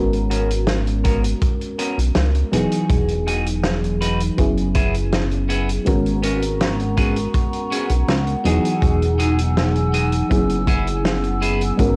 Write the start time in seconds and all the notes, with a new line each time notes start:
Already playing: G#1 G#3 B3 C#4 F#4 A#4
0.13 closed hi-hat
0.30 B3 C#4 F#4 A#4, closed hi-hat
0.51 closed hi-hat
0.67 snare, closed hi-hat
0.87 closed hi-hat
1.04 B3 C#4 F#4 A#4, kick, closed hi-hat
1.24 closed hi-hat
1.42 kick, closed hi-hat
1.61 closed hi-hat
1.79 B3 C#4 F#4 A#4, closed hi-hat
1.98 B1, closed hi-hat
2.15 C#2, snare, closed hi-hat
2.35 closed hi-hat
2.52 E1 E3 F#3 B3 D#4 F#4 G#4, closed hi-hat
2.72 closed hi-hat
2.90 E1, kick, closed hi-hat
3.08 closed hi-hat
3.27 D#4 F#4 G#4, closed hi-hat
3.46 closed hi-hat
3.64 snare, closed hi-hat
3.84 closed hi-hat
4.01 D#4 F#4 B4, closed hi-hat
4.20 closed hi-hat
4.37 F#1 F#3 B3 C#4 E4 G#4, kick, closed hi-hat
4.57 closed hi-hat
4.75 B3 E4 G#4, kick, closed hi-hat
4.94 closed hi-hat
5.12 snare, closed hi-hat
5.31 closed hi-hat
5.49 B3 E4 G#4, closed hi-hat
5.69 closed hi-hat
5.85 G#1 G#3 B3 C#4 F#4 A#4 F#5 A#5 C#6, kick, closed hi-hat
6.06 closed hi-hat
6.23 B3 C#4 F#4 A#4, closed hi-hat
6.42 closed hi-hat
6.60 snare, closed hi-hat
6.80 closed hi-hat
6.97 B3 C#4 F#4 G#4, kick, closed hi-hat
7.16 closed hi-hat
7.34 kick, closed hi-hat
7.53 closed hi-hat
7.71 B3 C#4 F#4 G#4, closed hi-hat
7.89 B1, closed hi-hat
8.08 C#2, snare, closed hi-hat
8.27 closed hi-hat
8.44 E1 E3 F#3 B3 D#4 F#4 G#4 G#5 E6, closed hi-hat
8.65 closed hi-hat
8.82 E1, kick, closed hi-hat
9.02 closed hi-hat
9.19 D#4 F#4 G#4, closed hi-hat
9.39 closed hi-hat
9.57 snare, closed hi-hat
9.76 closed hi-hat
9.94 D#4 F#4 G#4, closed hi-hat
10.12 closed hi-hat
10.29 F#1 F#3 B3 C#4 E4 G#4, kick, closed hi-hat
10.49 closed hi-hat
10.67 B3 E4 G#4, kick, closed hi-hat
10.87 closed hi-hat
11.05 snare, closed hi-hat
11.24 closed hi-hat
11.42 B3 E4 G#4, closed hi-hat
11.61 closed hi-hat
11.77 G#1 G#3 B3 C#4 F#4 A#4 A#5 C#6, kick, closed hi-hat